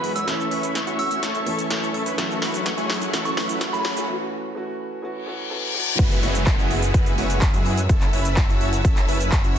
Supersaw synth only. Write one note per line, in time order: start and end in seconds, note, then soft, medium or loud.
0.00 0.13 G#3 medium
0.00 0.13 B3 medium
0.00 0.13 E4 medium
0.00 0.13 F#4 medium
0.00 0.13 B4 medium
0.15 0.25 G#3 medium
0.15 0.25 B3 medium
0.15 0.25 E4 medium
0.15 0.25 F#4 medium
0.15 0.25 C#5 medium
0.27 0.48 C#4 medium
0.27 0.48 E4 medium
0.27 0.48 A4 medium
0.51 0.79 C#4 medium
0.51 0.79 E4 medium
0.51 0.79 B4 loud
0.87 1.20 C#4 medium
0.87 1.20 E4 medium
0.87 1.20 F#4 medium
1.23 1.67 C#4 medium
1.23 1.67 E4 medium
1.23 1.67 A4 medium
1.70 2.03 C#4 medium
1.70 2.03 E4 medium
1.70 2.03 A4 medium
2.06 2.15 C#4 medium
2.06 2.15 E4 medium
2.06 2.15 B4 medium
2.18 2.39 F#3 medium
2.18 2.39 A3 medium
2.18 2.39 C#4 medium
2.18 2.39 E4 medium
2.18 2.39 A4 medium
2.42 2.70 F#3 medium
2.42 2.70 A3 medium
2.42 2.70 C#4 medium
2.42 2.70 E4 medium
2.42 2.70 B4 medium
2.77 3.10 F#3 medium
2.77 3.10 A3 medium
2.77 3.10 C#4 medium
2.77 3.10 E4 medium
2.77 3.10 G#4 medium
3.13 3.34 F#3 medium
3.13 3.34 A3 medium
3.13 3.34 C#4 medium
3.13 3.34 E4 medium
3.13 3.34 A4 medium
3.37 3.65 F#3 medium
3.37 3.65 A3 medium
3.37 3.65 C#4 medium
3.37 3.65 E4 medium
3.37 3.65 B4 loud
3.73 4.06 F#3 medium
3.73 4.06 A3 medium
3.73 4.06 C#4 medium
3.73 4.06 E4 medium
3.73 4.06 G#4 medium
5.99 6.20 G#3 medium
5.99 6.20 B3 medium
5.99 6.20 E4 medium
5.99 6.20 F#4 medium
5.99 6.20 B4 medium
6.23 6.51 G#3 medium
6.23 6.51 B3 medium
6.23 6.51 E4 medium
6.23 6.51 F#4 medium
6.23 6.51 C#5 loud
6.58 6.91 G#3 medium
6.58 6.91 B3 medium
6.58 6.91 E4 medium
6.58 6.91 F#4 medium
6.58 6.91 G#4 loud
6.94 7.16 G#3 medium
6.94 7.16 B3 medium
6.94 7.16 E4 medium
6.94 7.16 F#4 medium
6.94 7.16 B4 medium
7.18 7.46 G#3 medium
7.18 7.46 B3 medium
7.18 7.46 E4 medium
7.18 7.46 F#4 medium
7.18 7.46 C#5 medium
7.54 7.82 G#3 medium
7.54 7.82 B3 medium
7.54 7.82 E4 medium
7.54 7.82 F#4 medium
7.54 7.82 G#4 medium
7.89 8.10 C#4 medium
7.89 8.10 E4 medium
7.89 8.10 A4 medium
8.13 8.41 C#4 medium
8.13 8.41 E4 medium
8.13 8.41 B4 loud
8.49 8.82 C#4 medium
8.49 8.82 E4 medium
8.49 8.82 F#4 loud
9.08 9.36 C#4 medium
9.08 9.36 E4 medium
9.08 9.36 B4 medium
9.44 9.59 C#4 medium
9.44 9.59 E4 medium
9.44 9.59 F#4 medium